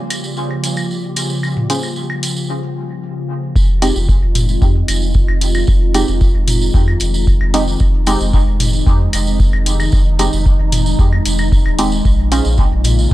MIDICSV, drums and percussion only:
0, 0, Header, 1, 2, 480
1, 0, Start_track
1, 0, Key_signature, -4, "minor"
1, 0, Tempo, 530973
1, 1295, Time_signature, 4, 2, 24, 8
1, 11876, End_track
2, 0, Start_track
2, 0, Title_t, "Drums"
2, 93, Note_on_c, 9, 54, 83
2, 95, Note_on_c, 9, 46, 71
2, 95, Note_on_c, 9, 75, 69
2, 184, Note_off_c, 9, 54, 0
2, 185, Note_off_c, 9, 46, 0
2, 185, Note_off_c, 9, 75, 0
2, 215, Note_on_c, 9, 54, 45
2, 306, Note_off_c, 9, 54, 0
2, 333, Note_on_c, 9, 54, 32
2, 423, Note_off_c, 9, 54, 0
2, 458, Note_on_c, 9, 75, 38
2, 548, Note_off_c, 9, 75, 0
2, 575, Note_on_c, 9, 46, 74
2, 576, Note_on_c, 9, 54, 77
2, 665, Note_off_c, 9, 46, 0
2, 666, Note_off_c, 9, 54, 0
2, 692, Note_on_c, 9, 54, 46
2, 698, Note_on_c, 9, 75, 67
2, 782, Note_off_c, 9, 54, 0
2, 789, Note_off_c, 9, 75, 0
2, 822, Note_on_c, 9, 54, 32
2, 912, Note_off_c, 9, 54, 0
2, 1051, Note_on_c, 9, 54, 79
2, 1055, Note_on_c, 9, 46, 73
2, 1055, Note_on_c, 9, 75, 39
2, 1142, Note_off_c, 9, 54, 0
2, 1145, Note_off_c, 9, 46, 0
2, 1146, Note_off_c, 9, 75, 0
2, 1174, Note_on_c, 9, 54, 50
2, 1265, Note_off_c, 9, 54, 0
2, 1296, Note_on_c, 9, 75, 69
2, 1299, Note_on_c, 9, 54, 37
2, 1386, Note_off_c, 9, 75, 0
2, 1389, Note_off_c, 9, 54, 0
2, 1417, Note_on_c, 9, 45, 73
2, 1508, Note_off_c, 9, 45, 0
2, 1535, Note_on_c, 9, 46, 73
2, 1536, Note_on_c, 9, 54, 77
2, 1625, Note_off_c, 9, 46, 0
2, 1626, Note_off_c, 9, 54, 0
2, 1652, Note_on_c, 9, 54, 47
2, 1658, Note_on_c, 9, 75, 39
2, 1742, Note_off_c, 9, 54, 0
2, 1748, Note_off_c, 9, 75, 0
2, 1773, Note_on_c, 9, 54, 32
2, 1863, Note_off_c, 9, 54, 0
2, 1898, Note_on_c, 9, 75, 73
2, 1988, Note_off_c, 9, 75, 0
2, 2015, Note_on_c, 9, 46, 71
2, 2021, Note_on_c, 9, 54, 85
2, 2106, Note_off_c, 9, 46, 0
2, 2111, Note_off_c, 9, 54, 0
2, 2137, Note_on_c, 9, 54, 47
2, 2228, Note_off_c, 9, 54, 0
2, 3215, Note_on_c, 9, 36, 111
2, 3218, Note_on_c, 9, 54, 41
2, 3305, Note_off_c, 9, 36, 0
2, 3308, Note_off_c, 9, 54, 0
2, 3454, Note_on_c, 9, 46, 81
2, 3454, Note_on_c, 9, 54, 80
2, 3455, Note_on_c, 9, 75, 53
2, 3544, Note_off_c, 9, 54, 0
2, 3545, Note_off_c, 9, 46, 0
2, 3545, Note_off_c, 9, 75, 0
2, 3578, Note_on_c, 9, 54, 48
2, 3668, Note_off_c, 9, 54, 0
2, 3695, Note_on_c, 9, 36, 97
2, 3698, Note_on_c, 9, 54, 38
2, 3785, Note_off_c, 9, 36, 0
2, 3789, Note_off_c, 9, 54, 0
2, 3934, Note_on_c, 9, 45, 93
2, 3935, Note_on_c, 9, 46, 79
2, 3938, Note_on_c, 9, 54, 89
2, 4025, Note_off_c, 9, 45, 0
2, 4025, Note_off_c, 9, 46, 0
2, 4028, Note_off_c, 9, 54, 0
2, 4057, Note_on_c, 9, 54, 50
2, 4148, Note_off_c, 9, 54, 0
2, 4173, Note_on_c, 9, 54, 35
2, 4175, Note_on_c, 9, 36, 114
2, 4263, Note_off_c, 9, 54, 0
2, 4265, Note_off_c, 9, 36, 0
2, 4414, Note_on_c, 9, 54, 84
2, 4415, Note_on_c, 9, 46, 81
2, 4415, Note_on_c, 9, 75, 73
2, 4505, Note_off_c, 9, 46, 0
2, 4505, Note_off_c, 9, 54, 0
2, 4505, Note_off_c, 9, 75, 0
2, 4536, Note_on_c, 9, 54, 46
2, 4626, Note_off_c, 9, 54, 0
2, 4648, Note_on_c, 9, 54, 36
2, 4655, Note_on_c, 9, 36, 97
2, 4739, Note_off_c, 9, 54, 0
2, 4745, Note_off_c, 9, 36, 0
2, 4777, Note_on_c, 9, 75, 76
2, 4868, Note_off_c, 9, 75, 0
2, 4894, Note_on_c, 9, 46, 77
2, 4895, Note_on_c, 9, 54, 82
2, 4985, Note_off_c, 9, 46, 0
2, 4985, Note_off_c, 9, 54, 0
2, 5013, Note_on_c, 9, 54, 47
2, 5017, Note_on_c, 9, 75, 75
2, 5103, Note_off_c, 9, 54, 0
2, 5108, Note_off_c, 9, 75, 0
2, 5128, Note_on_c, 9, 54, 37
2, 5135, Note_on_c, 9, 36, 117
2, 5218, Note_off_c, 9, 54, 0
2, 5225, Note_off_c, 9, 36, 0
2, 5374, Note_on_c, 9, 46, 83
2, 5375, Note_on_c, 9, 75, 55
2, 5377, Note_on_c, 9, 54, 85
2, 5465, Note_off_c, 9, 46, 0
2, 5465, Note_off_c, 9, 75, 0
2, 5467, Note_off_c, 9, 54, 0
2, 5497, Note_on_c, 9, 54, 54
2, 5587, Note_off_c, 9, 54, 0
2, 5612, Note_on_c, 9, 54, 38
2, 5615, Note_on_c, 9, 36, 103
2, 5702, Note_off_c, 9, 54, 0
2, 5705, Note_off_c, 9, 36, 0
2, 5855, Note_on_c, 9, 45, 97
2, 5855, Note_on_c, 9, 46, 79
2, 5856, Note_on_c, 9, 54, 89
2, 5945, Note_off_c, 9, 46, 0
2, 5946, Note_off_c, 9, 45, 0
2, 5947, Note_off_c, 9, 54, 0
2, 5980, Note_on_c, 9, 54, 55
2, 6070, Note_off_c, 9, 54, 0
2, 6095, Note_on_c, 9, 36, 116
2, 6100, Note_on_c, 9, 54, 39
2, 6185, Note_off_c, 9, 36, 0
2, 6191, Note_off_c, 9, 54, 0
2, 6218, Note_on_c, 9, 75, 77
2, 6308, Note_off_c, 9, 75, 0
2, 6327, Note_on_c, 9, 54, 94
2, 6335, Note_on_c, 9, 46, 82
2, 6418, Note_off_c, 9, 54, 0
2, 6425, Note_off_c, 9, 46, 0
2, 6455, Note_on_c, 9, 54, 56
2, 6546, Note_off_c, 9, 54, 0
2, 6575, Note_on_c, 9, 36, 100
2, 6575, Note_on_c, 9, 54, 36
2, 6665, Note_off_c, 9, 36, 0
2, 6666, Note_off_c, 9, 54, 0
2, 6698, Note_on_c, 9, 75, 76
2, 6788, Note_off_c, 9, 75, 0
2, 6815, Note_on_c, 9, 46, 83
2, 6815, Note_on_c, 9, 54, 81
2, 6905, Note_off_c, 9, 54, 0
2, 6906, Note_off_c, 9, 46, 0
2, 6938, Note_on_c, 9, 54, 51
2, 7029, Note_off_c, 9, 54, 0
2, 7049, Note_on_c, 9, 54, 43
2, 7055, Note_on_c, 9, 36, 116
2, 7139, Note_off_c, 9, 54, 0
2, 7145, Note_off_c, 9, 36, 0
2, 7291, Note_on_c, 9, 54, 87
2, 7295, Note_on_c, 9, 46, 81
2, 7295, Note_on_c, 9, 75, 57
2, 7381, Note_off_c, 9, 54, 0
2, 7385, Note_off_c, 9, 75, 0
2, 7386, Note_off_c, 9, 46, 0
2, 7419, Note_on_c, 9, 54, 49
2, 7509, Note_off_c, 9, 54, 0
2, 7533, Note_on_c, 9, 54, 36
2, 7535, Note_on_c, 9, 36, 104
2, 7624, Note_off_c, 9, 54, 0
2, 7625, Note_off_c, 9, 36, 0
2, 7774, Note_on_c, 9, 45, 92
2, 7776, Note_on_c, 9, 46, 81
2, 7777, Note_on_c, 9, 54, 97
2, 7865, Note_off_c, 9, 45, 0
2, 7866, Note_off_c, 9, 46, 0
2, 7868, Note_off_c, 9, 54, 0
2, 7894, Note_on_c, 9, 54, 52
2, 7984, Note_off_c, 9, 54, 0
2, 8015, Note_on_c, 9, 36, 122
2, 8019, Note_on_c, 9, 54, 35
2, 8105, Note_off_c, 9, 36, 0
2, 8109, Note_off_c, 9, 54, 0
2, 8254, Note_on_c, 9, 54, 85
2, 8255, Note_on_c, 9, 46, 85
2, 8255, Note_on_c, 9, 75, 79
2, 8345, Note_off_c, 9, 46, 0
2, 8345, Note_off_c, 9, 54, 0
2, 8345, Note_off_c, 9, 75, 0
2, 8381, Note_on_c, 9, 54, 49
2, 8471, Note_off_c, 9, 54, 0
2, 8494, Note_on_c, 9, 54, 35
2, 8495, Note_on_c, 9, 36, 103
2, 8585, Note_off_c, 9, 36, 0
2, 8585, Note_off_c, 9, 54, 0
2, 8618, Note_on_c, 9, 75, 79
2, 8708, Note_off_c, 9, 75, 0
2, 8735, Note_on_c, 9, 46, 84
2, 8738, Note_on_c, 9, 54, 93
2, 8826, Note_off_c, 9, 46, 0
2, 8828, Note_off_c, 9, 54, 0
2, 8857, Note_on_c, 9, 75, 81
2, 8860, Note_on_c, 9, 54, 50
2, 8948, Note_off_c, 9, 75, 0
2, 8950, Note_off_c, 9, 54, 0
2, 8967, Note_on_c, 9, 54, 42
2, 8975, Note_on_c, 9, 36, 115
2, 9057, Note_off_c, 9, 54, 0
2, 9065, Note_off_c, 9, 36, 0
2, 9211, Note_on_c, 9, 54, 84
2, 9215, Note_on_c, 9, 46, 83
2, 9215, Note_on_c, 9, 75, 55
2, 9302, Note_off_c, 9, 54, 0
2, 9305, Note_off_c, 9, 46, 0
2, 9305, Note_off_c, 9, 75, 0
2, 9337, Note_on_c, 9, 54, 59
2, 9428, Note_off_c, 9, 54, 0
2, 9455, Note_on_c, 9, 36, 103
2, 9458, Note_on_c, 9, 54, 39
2, 9545, Note_off_c, 9, 36, 0
2, 9549, Note_off_c, 9, 54, 0
2, 9695, Note_on_c, 9, 45, 88
2, 9695, Note_on_c, 9, 46, 80
2, 9695, Note_on_c, 9, 54, 85
2, 9785, Note_off_c, 9, 46, 0
2, 9785, Note_off_c, 9, 54, 0
2, 9786, Note_off_c, 9, 45, 0
2, 9817, Note_on_c, 9, 54, 52
2, 9908, Note_off_c, 9, 54, 0
2, 9935, Note_on_c, 9, 36, 117
2, 9937, Note_on_c, 9, 54, 37
2, 10025, Note_off_c, 9, 36, 0
2, 10028, Note_off_c, 9, 54, 0
2, 10058, Note_on_c, 9, 75, 74
2, 10148, Note_off_c, 9, 75, 0
2, 10174, Note_on_c, 9, 54, 87
2, 10175, Note_on_c, 9, 46, 82
2, 10265, Note_off_c, 9, 46, 0
2, 10265, Note_off_c, 9, 54, 0
2, 10293, Note_on_c, 9, 54, 50
2, 10298, Note_on_c, 9, 75, 70
2, 10383, Note_off_c, 9, 54, 0
2, 10388, Note_off_c, 9, 75, 0
2, 10415, Note_on_c, 9, 36, 101
2, 10418, Note_on_c, 9, 54, 38
2, 10505, Note_off_c, 9, 36, 0
2, 10509, Note_off_c, 9, 54, 0
2, 10538, Note_on_c, 9, 75, 77
2, 10629, Note_off_c, 9, 75, 0
2, 10654, Note_on_c, 9, 46, 85
2, 10660, Note_on_c, 9, 54, 84
2, 10745, Note_off_c, 9, 46, 0
2, 10751, Note_off_c, 9, 54, 0
2, 10776, Note_on_c, 9, 54, 56
2, 10866, Note_off_c, 9, 54, 0
2, 10895, Note_on_c, 9, 36, 115
2, 10895, Note_on_c, 9, 54, 36
2, 10985, Note_off_c, 9, 36, 0
2, 10986, Note_off_c, 9, 54, 0
2, 11134, Note_on_c, 9, 46, 82
2, 11135, Note_on_c, 9, 54, 91
2, 11136, Note_on_c, 9, 75, 53
2, 11225, Note_off_c, 9, 46, 0
2, 11225, Note_off_c, 9, 54, 0
2, 11226, Note_off_c, 9, 75, 0
2, 11252, Note_on_c, 9, 54, 55
2, 11343, Note_off_c, 9, 54, 0
2, 11370, Note_on_c, 9, 54, 37
2, 11375, Note_on_c, 9, 36, 100
2, 11460, Note_off_c, 9, 54, 0
2, 11465, Note_off_c, 9, 36, 0
2, 11610, Note_on_c, 9, 54, 88
2, 11615, Note_on_c, 9, 45, 89
2, 11615, Note_on_c, 9, 46, 76
2, 11700, Note_off_c, 9, 54, 0
2, 11705, Note_off_c, 9, 46, 0
2, 11706, Note_off_c, 9, 45, 0
2, 11740, Note_on_c, 9, 54, 46
2, 11830, Note_off_c, 9, 54, 0
2, 11876, End_track
0, 0, End_of_file